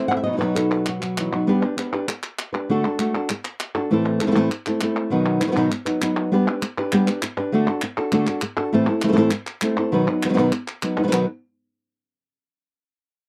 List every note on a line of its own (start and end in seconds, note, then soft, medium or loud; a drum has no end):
0.00 0.11 E3 soft
0.00 0.11 A3 soft
0.00 0.24 A3 medium
0.00 0.11 C4 soft
0.00 0.24 C4 medium
0.00 0.11 C5 medium
0.08 0.26 C4 soft
0.08 0.26 E4 medium
0.08 0.16 F#5 loud
0.13 0.26 A3 soft
0.17 0.23 E5 loud
0.24 0.40 B2 medium
0.24 1.46 B2 medium
0.24 0.31 F#3 medium
0.24 0.32 B3 medium
0.24 0.32 D#4 medium
0.24 0.32 F#4 medium
0.24 0.38 D#5 loud
0.32 0.36 F#3 soft
0.32 0.36 B3 soft
0.32 0.36 D#4 soft
0.32 0.37 F#4 soft
0.37 0.40 F#3 medium
0.37 0.41 B3 medium
0.37 0.41 D#4 medium
0.37 0.41 F#4 medium
0.37 0.69 B4 medium
0.41 0.56 B2 medium
0.41 0.56 F#3 medium
0.41 1.01 F#3 medium
0.41 0.56 B3 medium
0.41 0.56 D#4 medium
0.41 0.55 F#4 medium
0.55 0.87 B3 soft
0.55 0.87 D#4 soft
0.55 0.86 F#4 medium
0.55 0.86 A4 medium
0.55 clap medium
0.70 1.47 B4 medium
0.86 1.47 F#4 medium
0.86 muted nylon-string guitar stroke medium
0.86 clap medium
1.02 1.32 F#3 medium
1.02 clap medium
1.17 1.33 E3 medium
1.17 1.32 F#3 soft
1.17 1.32 B3 soft
1.17 1.32 D#4 soft
1.17 1.31 F#4 medium
1.17 clap medium
1.32 1.47 F#3 medium
1.32 1.48 B3 soft
1.32 1.48 D#4 soft
1.32 1.47 F#4 medium
1.47 1.62 G3 medium
1.47 1.62 B3 loud
1.47 1.63 D4 medium
1.47 1.62 G4 loud
1.47 1.61 B4 loud
1.62 1.76 D4 medium
1.62 1.78 G4 medium
1.62 1.77 B4 medium
1.77 1.92 B3 medium
1.77 1.93 D4 medium
1.77 1.93 G4 medium
1.77 1.92 B4 medium
1.77 clap medium
1.93 2.07 D4 medium
1.93 2.07 G4 medium
1.93 2.08 B4 medium
2.08 muted nylon-string guitar stroke medium
2.08 clap medium
2.23 clap medium
2.39 clap medium
2.53 2.69 D4 soft
2.53 2.69 G4 medium
2.53 2.68 B4 medium
2.69 2.84 D3 medium
2.69 2.84 A3 medium
2.69 2.84 D4 medium
2.69 2.85 F#4 medium
2.69 2.84 A4 loud
2.85 2.99 D4 soft
2.85 2.99 F#4 medium
2.85 2.99 A4 medium
2.99 3.14 A3 medium
2.99 3.14 D4 medium
2.99 3.14 F#4 medium
2.99 3.13 A4 medium
2.99 clap medium
3.14 3.30 D4 medium
3.14 3.30 F#4 medium
3.14 3.29 A4 medium
3.29 muted nylon-string guitar stroke medium
3.29 clap medium
3.45 clap medium
3.60 clap medium
3.75 3.91 D4 medium
3.75 3.90 F#4 medium
3.75 3.90 A4 medium
3.91 4.20 A2 medium
3.91 4.20 E3 medium
3.91 4.21 A3 medium
3.91 4.21 C4 medium
3.91 4.20 E4 medium
3.91 4.19 A4 loud
4.21 4.26 E3 medium
4.21 4.25 A3 medium
4.21 4.24 C4 medium
4.21 4.23 E4 medium
4.21 4.23 A4 medium
4.21 clap medium
4.27 4.30 E3 medium
4.27 4.30 A3 medium
4.27 4.31 C4 medium
4.27 4.31 E4 medium
4.27 4.31 A4 medium
4.31 4.35 E3 medium
4.31 4.35 A3 medium
4.31 4.36 C4 medium
4.31 4.36 E4 medium
4.31 4.36 A4 medium
4.36 4.50 A2 medium
4.36 4.50 E3 loud
4.36 4.50 A3 loud
4.36 4.51 C4 loud
4.36 4.51 E4 loud
4.36 4.51 A4 loud
4.51 muted nylon-string guitar stroke medium
4.51 clap medium
4.66 4.80 A3 soft
4.66 4.81 C4 medium
4.66 4.81 E4 medium
4.66 4.81 A4 medium
4.66 clap medium
4.81 5.11 A3 medium
4.81 5.11 C4 medium
4.81 5.12 E4 medium
4.81 5.12 A4 medium
4.81 clap medium
5.10 5.40 B2 medium
5.10 5.41 D#3 medium
5.10 5.41 F#3 medium
5.10 5.41 B3 loud
5.10 5.40 D#4 medium
5.10 5.39 B4 medium
5.40 5.46 D#3 medium
5.40 5.45 F#3 soft
5.40 5.44 B3 medium
5.40 5.43 D#4 medium
5.40 5.43 B4 medium
5.40 5.47 B4 medium
5.40 clap medium
5.47 5.50 D#3 medium
5.47 5.51 F#3 medium
5.47 5.51 B3 medium
5.47 5.52 D#4 medium
5.47 5.52 B4 medium
5.52 5.55 D#3 medium
5.52 5.56 F#3 medium
5.52 5.56 B3 medium
5.52 5.56 D#4 medium
5.52 5.56 B4 medium
5.56 5.70 B2 medium
5.56 5.71 D#3 medium
5.56 5.71 F#3 loud
5.56 5.71 B3 medium
5.56 5.71 D#4 loud
5.56 5.71 B4 loud
5.72 muted nylon-string guitar stroke medium
5.72 clap medium
5.85 6.00 F#3 soft
5.85 6.01 B3 soft
5.85 6.01 D#4 medium
5.85 6.01 B4 medium
5.85 clap medium
6.01 6.31 F#3 medium
6.01 6.31 B3 medium
6.01 6.32 D#4 medium
6.01 6.32 B4 medium
6.01 clap medium
6.32 6.46 G3 medium
6.32 6.47 B3 medium
6.32 6.47 D4 medium
6.32 6.47 G4 loud
6.32 6.46 B4 medium
6.47 6.62 D4 soft
6.47 6.62 G4 medium
6.47 6.62 B4 medium
6.62 muted nylon-string guitar stroke medium
6.62 clap medium
6.78 6.93 D4 medium
6.78 6.93 G4 medium
6.78 6.92 B4 medium
6.92 7.07 G3 medium
6.92 7.07 B3 medium
6.92 7.07 D4 loud
6.92 7.08 G4 loud
6.92 7.06 B4 loud
6.92 clap medium
7.08 7.22 D4 medium
7.08 7.22 G4 medium
7.08 7.22 B4 medium
7.08 clap medium
7.22 muted nylon-string guitar stroke medium
7.22 clap loud
7.37 7.52 D4 medium
7.37 7.52 G4 medium
7.37 7.52 B4 medium
7.52 7.67 D3 medium
7.52 7.67 A3 loud
7.52 7.67 D4 loud
7.52 7.68 F#4 medium
7.52 7.67 A4 loud
7.68 7.82 D4 soft
7.68 7.83 F#4 medium
7.68 7.82 A4 medium
7.82 muted nylon-string guitar stroke medium
7.82 clap medium
7.98 8.12 D4 medium
7.98 8.12 F#4 medium
7.98 8.12 A4 medium
8.12 8.27 D3 medium
8.12 8.27 A3 medium
8.12 8.27 D4 loud
8.12 8.27 F#4 loud
8.12 8.26 A4 medium
8.12 clap medium
8.27 8.42 D4 medium
8.27 8.42 F#4 medium
8.27 8.42 A4 medium
8.27 clap medium
8.41 muted nylon-string guitar stroke medium
8.41 clap loud
8.57 8.73 D4 medium
8.57 8.72 F#4 medium
8.57 8.72 A4 medium
8.73 8.87 A2 loud
8.73 8.87 E3 medium
8.73 8.87 A3 medium
8.73 8.88 C4 loud
8.73 8.88 E4 medium
8.73 8.86 A4 loud
8.88 9.03 A3 medium
8.88 9.03 C4 medium
8.88 9.03 E4 medium
8.88 9.04 A4 medium
9.02 9.07 E3 medium
9.02 9.07 A3 medium
9.02 9.08 C4 medium
9.02 9.07 E4 medium
9.02 9.08 A4 medium
9.02 clap medium
9.08 9.11 E3 medium
9.08 9.12 A3 medium
9.08 9.12 C4 medium
9.08 9.12 E4 medium
9.08 9.12 A4 medium
9.12 9.16 E3 medium
9.12 9.16 A3 medium
9.12 9.16 C4 loud
9.12 9.17 E4 medium
9.12 9.17 A4 loud
9.17 9.31 A2 loud
9.17 9.31 E3 loud
9.17 9.31 A3 loud
9.17 9.32 C4 loud
9.17 9.32 E4 loud
9.17 9.32 A4 loud
9.31 muted nylon-string guitar stroke medium
9.31 clap medium
9.47 clap medium
9.61 9.77 A3 medium
9.61 9.77 C4 medium
9.61 9.77 E4 medium
9.61 9.76 A4 medium
9.61 clap medium
9.77 9.92 A3 medium
9.77 9.93 C4 medium
9.77 9.92 E4 medium
9.77 9.92 A4 medium
9.92 10.07 B2 medium
9.92 10.07 D#3 loud
9.92 10.07 F#3 medium
9.92 10.07 B3 medium
9.92 10.07 D#4 loud
9.92 10.06 B4 loud
10.08 10.24 F#3 medium
10.08 10.24 B3 medium
10.08 10.24 D#4 medium
10.08 10.25 B4 medium
10.23 10.28 D#3 medium
10.23 10.28 F#3 medium
10.23 10.28 B3 medium
10.23 10.29 D#4 medium
10.23 10.29 B4 medium
10.23 clap medium
10.29 10.32 D#3 medium
10.29 10.33 F#3 medium
10.29 10.33 B3 medium
10.29 10.33 D#4 medium
10.29 10.34 B4 medium
10.34 10.37 D#3 medium
10.34 10.37 F#3 loud
10.34 10.38 B3 medium
10.34 10.38 D#4 medium
10.34 10.38 B4 medium
10.38 10.52 B2 loud
10.38 10.52 D#3 loud
10.38 10.52 F#3 loud
10.38 10.53 B3 loud
10.38 10.53 D#4 medium
10.38 10.53 B4 loud
10.52 muted nylon-string guitar stroke medium
10.52 clap medium
10.68 clap medium
10.83 10.97 F#3 medium
10.83 10.98 B3 medium
10.83 10.97 D#4 medium
10.83 10.97 B4 medium
10.83 clap medium
10.98 11.03 F#3 medium
10.98 11.02 B3 medium
10.98 11.03 D#4 medium
10.98 11.03 B4 medium
11.03 11.07 D#3 medium
11.03 11.07 F#3 medium
11.03 11.07 B3 medium
11.03 11.07 D#4 medium
11.03 11.08 B4 medium
11.08 11.11 D#3 medium
11.08 11.12 F#3 medium
11.08 11.12 B3 medium
11.08 11.12 D#4 medium
11.08 11.12 B4 medium
11.12 11.25 B2 medium
11.12 11.25 D#3 loud
11.12 11.25 F#3 medium
11.12 11.25 B3 medium
11.12 11.25 D#4 loud
11.12 11.25 B4 loud
11.12 clap loud